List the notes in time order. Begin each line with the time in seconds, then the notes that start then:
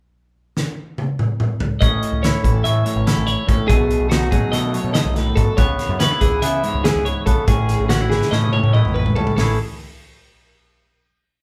0.57 snare
0.98 high tom
1.19 mid tom
1.40 mid tom
1.60 floor tom
1.81 A1 A2 C#4 D#5, kick, closed hi-hat
2.03 closed hi-hat
2.12 C#2
2.23 E4 C#5, snare, closed hi-hat
2.43 A1 E3 A4, kick, closed hi-hat
2.64 A2 C#4 E5, closed hi-hat
2.85 A2 C#5, closed hi-hat
2.96 A1
3.06 E4 A4, snare, closed hi-hat
3.17 A1
3.27 C#5, closed hi-hat
3.47 A2 C#4 A4, kick, closed hi-hat
3.68 B1 B2 A3 G#4, kick, closed hi-hat
3.91 closed hi-hat
4.00 B1
4.10 D#4 F#4, snare, closed hi-hat
4.31 A1 F#3 G#4, kick, closed hi-hat
4.52 B2 A3 D#5, snare, closed hi-hat
4.73 F#2 C#5, closed hi-hat
4.84 B2
4.94 G#2 D#5, snare, closed hi-hat
5.05 B1
5.14 A2 B4, snare, closed hi-hat
5.36 G#2 B2 A4, kick, closed hi-hat
5.57 C#2 C#3 B3 C#5, kick, closed hi-hat
5.79 snare, closed hi-hat
5.89 F#2
5.99 C#4 B4, snare, closed hi-hat
6.11 E4
6.21 C#2 E3 G#4, kick, closed hi-hat
6.42 C#3 B3 E5, closed hi-hat
6.63 G#2 C#5, closed hi-hat
6.74 C#2
6.84 E4 G#4, snare, closed hi-hat
6.95 C#2
7.05 C#5, closed hi-hat
7.26 B1 C#3 B3 A4, kick, closed hi-hat
7.48 A1 A2 C#4 G#4, kick, closed hi-hat
7.69 snare, closed hi-hat
7.80 A1
7.89 C#4 F#4, snare, closed hi-hat
8.01 E4
8.10 G#1 E3 G#4, snare
8.22 snare
8.31 A2 C#4 D#5, snare
8.43 high tom
8.53 A2 C#5, high tom
8.63 A2, mid tom
8.73 E4 D#5, mid tom
8.85 A1, mid tom
8.94 B4, mid tom
9.06 floor tom
9.16 C#2 A2 C#4 A4, floor tom
9.27 floor tom
9.37 A1 A2 E3 C#4 E4 A4, snare, open hi-hat
9.41 G#4